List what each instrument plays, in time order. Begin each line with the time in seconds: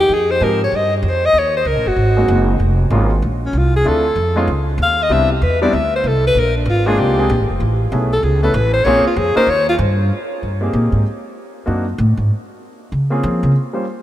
0.00 alto saxophone G4
0.09 upright bass F2
0.14 alto saxophone G#4
0.31 alto saxophone C5
0.41 upright bass G#2, grand piano F3 G#3 C4 D#4 G4, alto saxophone A#4
0.64 alto saxophone C#5
0.72 upright bass G2, alto saxophone D#5
0.96 alto saxophone G4
1.03 upright bass F2
1.08 alto saxophone C5
1.25 alto saxophone D#5
1.33 upright bass D#2
1.38 alto saxophone C#5
1.57 alto saxophone C5
1.65 upright bass C#2, alto saxophone A#4
1.75 upright bass A#1
1.86 upright bass F#1, alto saxophone F#4
1.96 upright bass G#1
2.17 grand piano G#3 A#3 C4 D#4 F#4
2.28 upright bass F#1
2.60 upright bass F1
2.90 upright bass G#1, grand piano G#3 A#3 C#4 D#4 F4
3.22 upright bass A#1
3.45 alto saxophone C#4
3.53 upright bass C2
3.58 alto saxophone F4
3.76 alto saxophone G#4
3.84 upright bass D2, grand piano A3 C4 D4 E4 F4, alto saxophone A4
4.16 upright bass F2
4.36 grand piano G#3 B3 C#4 D#4 F4
4.47 upright bass C#2
4.78 upright bass D#2
4.82 alto saxophone F5
5.03 alto saxophone D#5
5.09 upright bass C2, grand piano G3 B3 C4 D4 E4, alto saxophone E5
5.32 alto saxophone G4
5.42 upright bass E2, alto saxophone B4
5.62 grand piano G3 B3 C4 D4 E4, alto saxophone D5
5.73 upright bass D2, alto saxophone E5
5.96 alto saxophone C5
6.04 upright bass C2, alto saxophone A4
6.27 alto saxophone B4
6.35 upright bass A#1
6.39 alto saxophone A#4
6.57 alto saxophone D4
6.66 upright bass G#1, alto saxophone F4
6.86 grand piano G#3 A#3 C4 D4 F4, alto saxophone G#4
6.98 upright bass C2, alto saxophone G4
7.18 grand piano G#3 A#3 C4 D4 G#4
7.30 upright bass A#1
7.39 upright bass G#1
7.50 upright bass F1
7.60 upright bass A1
7.92 upright bass B1, grand piano A3 B3 C#4 E4 G#4
8.12 alto saxophone A4
8.23 upright bass C#2, alto saxophone G#4
8.43 grand piano A3 B3 C#4 E4 B4, alto saxophone A4
8.54 upright bass A1, alto saxophone B4
8.73 alto saxophone C5
8.84 upright bass A#1, grand piano A#3 C4 C#4 F4 G#4, alto saxophone C#5
9.04 alto saxophone F4, muted upright bass stroke
9.16 upright bass F2, alto saxophone G#4
9.36 grand piano A#3 C#4 D#4 F4 A#4, alto saxophone C5, muted upright bass stroke
9.47 upright bass D#2, alto saxophone C#5
9.69 alto saxophone F4
9.78 upright bass G2
10.42 upright bass G2
10.61 grand piano A#3 C4 D#4 G4 G#4
10.73 upright bass A#2
10.92 upright bass G#2
11.66 upright bass F#2, grand piano A#3 C4 D4 D#4 F#4
11.98 upright bass A2
12.17 upright bass G#2
12.92 upright bass C#3
13.10 grand piano A#3 C4 C#4 F4 G#4
13.23 upright bass F3
13.43 upright bass C#3
13.73 grand piano G3 A#3 C#4 F4 C5